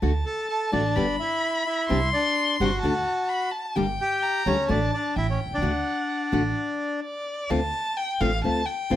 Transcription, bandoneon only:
0.26 0.47 A4 medium
0.26 0.47 A5 medium
0.48 0.71 A4 medium
0.48 0.70 A5 medium
0.72 1.17 D4 medium
0.72 1.16 D5 medium
1.20 1.64 E4 medium
1.20 1.63 E5 medium
1.66 2.10 E4 medium
1.66 2.09 E5 medium
2.13 2.57 D4 medium
2.13 2.56 D5 medium
2.61 3.50 F#4 medium
2.61 3.49 F#5 medium
4.00 4.43 G4 medium
4.00 4.48 G5 medium
4.46 4.68 C#4 medium
4.46 4.70 C#5 medium
4.70 4.91 D4 medium
4.70 4.91 D5 medium
4.94 5.15 D4 medium
4.94 5.15 D5 medium
5.17 5.27 E4 medium
5.17 5.27 E5 medium
5.30 5.40 C#4 medium
5.30 5.40 C#5 medium
5.54 7.00 D4 medium
5.54 7.00 D5 medium

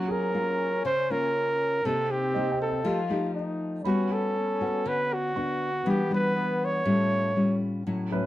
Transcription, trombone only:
0.00 1.79 C#4 medium
1.84 2.80 C4 medium
2.84 3.31 F4 loud
3.34 3.86 D#4 medium
3.84 5.58 C#4 medium
5.86 6.32 B3 loud
6.35 6.87 B3 medium
6.86 7.61 A3 medium

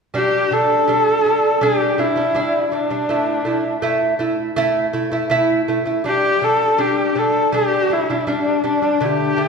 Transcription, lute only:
0.14 0.44 G3 medium
0.14 0.45 D4 medium
0.51 0.81 G3 medium
0.51 0.82 D4 medium
0.88 1.18 G3 medium
0.88 1.19 D4 medium
1.25 1.55 G3 medium
1.25 1.55 D4 medium
1.61 1.91 G3 medium
1.61 1.92 D4 loud
1.98 2.14 G3 medium
1.98 2.14 D4 medium
2.16 2.32 G3 medium
2.16 2.32 D4 medium
2.34 2.65 G3 medium
2.34 2.66 D4 medium
2.72 2.87 G3 medium
2.72 2.88 D4 medium
2.90 3.06 G3 medium
2.90 3.06 D4 medium
3.09 3.39 A3 medium
3.09 3.40 E4 medium
3.45 3.75 A3 medium
3.45 3.76 E4 medium
3.82 4.13 A3 loud
3.82 4.13 E4 loud
4.19 4.50 A3 medium
4.19 4.50 E4 medium
4.56 4.87 A3 loud
4.56 4.87 E4 loud
4.93 5.09 A3 medium
4.93 5.09 E4 medium
5.12 5.27 A3 medium
5.12 5.28 E4 medium
5.30 5.60 A3 medium
5.30 5.61 E4 loud
5.68 5.83 A3 medium
5.68 5.84 E4 medium
5.85 6.01 A3 medium
5.85 6.02 E4 medium
6.04 6.34 G3 medium
6.04 6.35 D4 medium
6.41 6.72 G3 medium
6.41 6.72 D4 medium
6.78 7.08 G3 medium
6.78 7.09 D4 medium
7.15 7.45 G3 medium
7.15 7.46 D4 medium
7.52 7.83 G3 medium
7.52 7.83 D4 loud
7.90 8.05 G3 medium
7.90 8.05 D4 medium
8.10 8.24 G3 medium
8.10 8.25 D4 medium
8.27 8.57 G3 medium
8.27 8.57 D4 medium
8.64 8.79 G3 medium
8.64 8.79 D4 medium
8.82 8.97 G3 medium
8.82 8.98 D4 medium
9.01 9.31 D3 medium
9.01 9.31 A3 medium
9.36 9.48 D3 medium
9.36 9.48 A3 medium

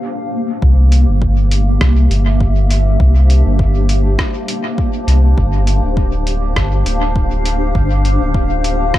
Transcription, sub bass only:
0.62 1.05 C2 loud
1.08 1.78 G1 medium
1.81 2.08 C2 medium
2.10 2.97 G1 loud
3.00 3.43 C2 loud
3.46 4.16 G1 medium
5.07 5.34 C2 medium
5.37 5.80 G1 loud
5.83 6.53 D1 medium
6.56 6.83 G1 medium
6.85 7.72 D1 loud
7.75 8.18 G1 loud
8.21 8.91 D1 medium

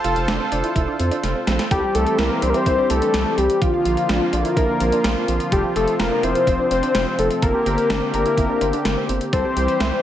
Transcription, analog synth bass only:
0.05 0.15 F1 loud
0.16 0.27 F1 loud
0.28 0.39 F1 loud
0.52 0.63 F1 loud
0.76 0.86 F1 loud
1.00 1.10 F2 medium
1.24 1.34 F1 medium
1.47 1.58 A#1 medium
1.71 1.82 C2 loud
1.95 2.06 C2 loud
2.19 2.29 C2 loud
2.43 2.53 C2 loud
2.66 2.77 C2 loud
2.90 3.01 C2 loud
3.14 3.25 C2 medium
3.38 3.48 C2 loud
3.62 3.72 A#1 loud
3.86 3.96 A#1 loud
4.09 4.20 A#1 loud
4.33 4.44 A#1 loud
4.57 4.67 A#1 loud
4.81 4.91 A#1 loud
5.05 5.15 A#1 loud
5.28 5.39 A#1 loud
5.52 5.63 F1 loud
5.76 5.87 F1 loud
6.00 6.10 F1 loud
6.23 6.34 F1 medium
6.47 6.58 F1 loud
6.71 6.82 F1 loud
6.95 7.06 F1 medium
7.19 7.29 F1 loud
7.43 7.53 G1 loud
7.66 7.77 G1 loud
7.90 8.01 G1 loud
8.14 8.25 G1 loud
8.37 8.48 G1 loud
8.61 8.72 G1 medium
8.85 8.96 G1 medium
9.09 9.20 G1 medium
9.33 9.44 C2 loud
9.57 9.67 C2 loud
9.80 9.91 C2 loud

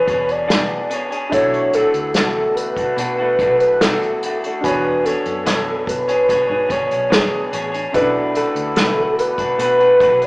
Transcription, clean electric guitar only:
0.07 0.47 B3 medium
0.07 0.48 D4 medium
0.07 0.49 G#4 medium
0.07 0.50 C#5 medium
0.48 0.90 E3 medium
0.48 0.89 B3 medium
0.48 0.90 D4 medium
0.48 0.91 G#4 medium
0.90 1.11 B3 medium
0.90 1.12 D4 medium
0.90 1.11 G#4 medium
0.90 1.09 C#5 medium
1.11 1.31 D4 soft
1.11 1.33 G#4 soft
1.11 1.32 C#5 soft
1.31 1.73 B2 medium
1.31 1.72 E3 medium
1.31 1.73 A3 medium
1.31 1.74 D4 medium
1.31 1.74 F#4 medium
1.73 2.14 E3 medium
1.73 2.15 A3 medium
1.73 2.15 D4 medium
1.73 2.16 F#4 medium
2.15 2.77 B2 medium
2.15 2.77 E3 medium
2.15 2.77 A3 medium
2.15 2.77 D4 medium
2.15 2.76 F#4 medium
2.77 2.97 A3 soft
2.77 2.98 D4 soft
2.77 2.98 F#4 soft
2.96 3.18 E3 medium
2.96 3.19 A3 medium
2.96 3.19 D4 medium
2.96 3.17 F#4 medium
3.18 3.39 A3 soft
3.18 3.40 D4 soft
3.18 3.39 F#4 medium
3.39 3.81 E3 medium
3.39 3.81 A3 medium
3.39 3.82 D4 medium
3.39 3.82 F#4 medium
3.83 4.23 B2 medium
3.83 4.22 E3 medium
3.83 4.23 A3 medium
3.83 4.24 D4 medium
3.83 4.24 F#4 medium
4.23 4.43 E3 medium
4.23 4.43 A3 medium
4.23 4.44 D4 medium
4.23 4.43 F#4 medium
4.45 4.65 A3 soft
4.45 4.64 D4 soft
4.45 4.64 F#4 soft
4.64 5.05 E3 medium
4.64 5.03 B3 medium
4.64 5.05 D4 medium
4.64 5.06 G#4 medium
4.64 5.06 C#5 medium
5.05 5.45 B3 medium
5.05 5.45 D4 medium
5.05 5.46 C#5 medium
5.46 6.08 E3 medium
5.46 6.08 B3 medium
5.46 6.08 D4 medium
5.46 6.07 C#5 medium
6.08 6.29 D4 soft
6.08 6.29 G#4 soft
6.08 6.29 C#5 soft
6.28 6.49 B3 soft
6.28 6.50 D4 medium
6.28 6.49 G#4 medium
6.28 6.47 C#5 medium
6.48 6.69 D4 soft
6.48 6.70 G#4 soft
6.48 6.70 C#5 soft
6.68 7.09 B3 medium
6.68 7.10 D4 medium
6.68 7.10 G#4 medium
6.68 7.11 C#5 medium
7.10 7.52 E3 medium
7.10 7.50 B3 medium
7.10 7.51 D4 medium
7.10 7.52 G#4 medium
7.10 7.53 C#5 medium
7.52 7.73 B3 soft
7.52 7.73 D4 medium
7.52 7.72 G#4 medium
7.52 7.71 C#5 medium
7.72 7.94 D4 soft
7.72 7.94 G#4 soft
7.72 7.93 C#5 soft
7.93 8.35 B2 medium
7.93 8.35 E3 medium
7.93 8.33 A3 medium
7.93 8.34 D4 medium
7.93 8.35 F#4 medium
7.93 8.36 B4 medium
8.34 8.75 A3 medium
8.34 8.75 D4 medium
8.34 8.76 F#4 medium
8.34 8.76 B4 medium
8.76 9.38 B2 medium
8.76 9.39 E3 medium
8.76 9.39 A3 medium
8.76 9.39 D4 medium
8.76 9.37 F#4 medium
8.76 9.37 B4 medium
9.38 9.57 A3 soft
9.38 9.58 D4 soft
9.38 9.59 F#4 soft
9.38 9.59 B4 soft
9.58 9.79 A3 medium
9.58 9.79 D4 soft
9.58 9.78 F#4 medium
9.58 9.77 B4 medium
9.78 9.99 A3 soft
9.78 9.99 D4 soft
9.78 10.01 F#4 soft
9.78 10.00 B4 soft
10.00 10.27 A3 medium
10.00 10.27 D4 medium
10.00 10.27 F#4 medium
10.00 10.27 B4 medium

